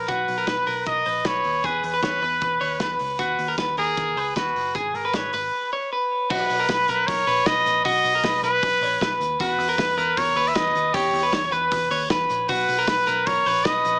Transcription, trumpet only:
0.00 0.11 A#4 medium
0.09 0.87 B4 medium
0.87 1.28 D#5 loud
1.27 1.67 C#5 medium
1.66 1.84 B4 medium
1.85 2.97 B4 loud
3.21 3.56 B4 medium
3.79 4.32 G#4 loud
4.37 4.77 F#4 medium
4.76 4.97 G#4 medium
4.95 5.16 A#4 medium
5.15 5.72 B4 medium
6.30 7.09 B4 medium
7.07 7.48 C#5 loud
7.46 7.84 D#5 loud
7.85 8.39 D#5 loud
8.44 9.17 B4 loud
9.40 10.19 B4 medium
10.18 10.50 C#5 loud
10.48 10.57 E5 medium
10.56 10.96 D#5 loud
10.95 11.54 C#5 medium
11.53 12.03 B4 medium
12.49 13.28 B4 loud
13.27 13.66 C#5 loud
13.65 13.99 D#5 loud

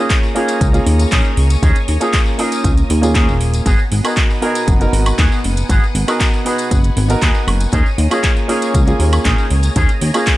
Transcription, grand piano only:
0.00 0.32 A#3 medium
0.00 0.32 C#4 medium
0.00 0.33 F4 medium
0.00 0.33 G#4 medium
0.35 0.70 A#3 medium
0.35 0.71 C#4 medium
0.35 0.71 F4 medium
0.35 0.71 G#4 loud
0.73 1.97 A#3 medium
0.73 1.98 C#4 medium
0.73 1.98 F4 medium
0.73 1.98 G#4 loud
2.01 2.36 A#3 medium
2.01 2.36 C#4 medium
2.01 2.36 F4 medium
2.01 2.36 G#4 medium
2.38 2.99 A#3 medium
2.38 2.99 C#4 medium
2.38 3.00 F4 medium
2.38 3.00 A#4 medium
3.02 3.64 A#3 medium
3.02 3.64 C#4 medium
3.02 3.65 F4 medium
3.02 3.65 G#4 loud
4.04 4.39 B3 medium
4.04 4.39 D#4 medium
4.04 4.39 F#4 medium
4.04 4.40 A#4 medium
4.42 4.77 B3 medium
4.42 4.77 D#4 medium
4.42 4.78 F#4 medium
4.42 4.78 A#4 loud
4.80 6.04 B3 medium
4.80 6.05 D#4 medium
4.80 6.05 F#4 medium
4.80 6.05 A#4 loud
6.07 6.42 B3 medium
6.07 6.43 D#4 medium
6.07 6.43 F#4 medium
6.07 6.43 A#4 medium
6.45 7.06 B3 medium
6.45 7.06 D#4 medium
6.45 7.07 F#4 medium
6.45 7.07 B4 medium
7.08 7.71 B3 medium
7.08 7.71 D#4 medium
7.08 7.71 F#4 medium
7.08 7.72 A#4 loud
8.10 8.46 A#3 medium
8.10 8.46 C#4 medium
8.10 8.46 F4 medium
8.10 8.46 G#4 medium
8.48 8.84 A#3 loud
8.48 8.84 C#4 medium
8.48 8.84 F4 medium
8.48 8.84 G#4 loud
8.86 10.11 A#3 medium
8.86 10.11 C#4 medium
8.86 10.11 F4 medium
8.86 10.12 G#4 loud
10.14 10.37 A#3 medium
10.14 10.37 C#4 medium
10.14 10.37 F4 medium
10.14 10.37 G#4 medium

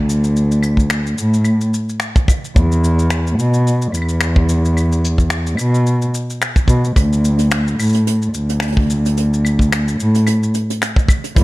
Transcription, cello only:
0.00 1.10 D2 medium
1.18 1.66 A2 medium
2.56 3.31 E2 medium
3.38 3.86 B2 medium
3.93 5.51 E2 medium
5.58 6.06 B2 medium
6.68 6.87 B2 medium
6.96 7.71 D2 medium
7.78 8.26 A2 medium
8.34 9.91 D2 medium
9.99 10.47 A2 medium
11.36 11.44 E2 loud

